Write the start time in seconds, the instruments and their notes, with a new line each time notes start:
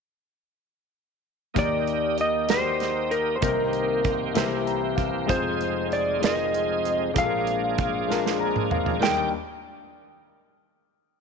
1.54 grand piano D#2 D#3 A#3 D#4 G4 D5, tonewheel organ D#3 A#3 D#4 G4, kick, closed hi-hat
1.59 electric slide guitar D5
1.88 closed hi-hat
2.18 electric slide guitar D#5, closed hi-hat
2.48 grand piano A#3 D#4 F#4 D5, electric slide guitar C5, snare, closed hi-hat
2.57 grand piano G4
2.80 snare, closed hi-hat
3.11 electric slide guitar A#4, closed hi-hat
3.36 electric slide guitar C5
3.41 grand piano C2 C3 A#3 D#4 G4 C5, tonewheel organ D#3 A#3 C4 G4, electric slide guitar A#4, kick, closed hi-hat
3.73 closed hi-hat
4.04 kick, closed hi-hat
4.34 grand piano C2 C3 A#3 E4 G4 C5, tonewheel organ E3 A#3 C4 G4, snare, closed hi-hat
4.66 grand piano A#5, closed hi-hat
4.96 grand piano F5, kick, closed hi-hat
5.26 grand piano F1 F2 G#3 D#4 F4 C5, tonewheel organ F3 C4 D#4 G#4, electric slide guitar C5, kick, closed hi-hat
5.61 closed hi-hat
5.92 electric slide guitar D5, closed hi-hat
6.20 grand piano G#3 D#4 F4 A#4, closed hi-hat
6.24 electric slide guitar D#5, snare
6.54 closed hi-hat
6.85 closed hi-hat
7.13 grand piano A#1 A#2 G#3 D4 F4, tonewheel organ F3 A#3 D4 G4, kick, closed hi-hat
7.18 tonewheel organ G#4, grand piano A4, electric slide guitar F5
7.24 grand piano A#4
7.47 closed hi-hat
7.78 kick, closed hi-hat
8.07 grand piano G#3 D4 F4 A#4, snare
8.26 snare
8.40 grand piano A#5
8.56 mid tom
8.71 grand piano F5, floor tom
8.86 floor tom
9.00 grand piano D#2 G3 D4 D#4 A#4, tonewheel organ D#3 A#3 G4 D5, electric slide guitar G5
9.04 snare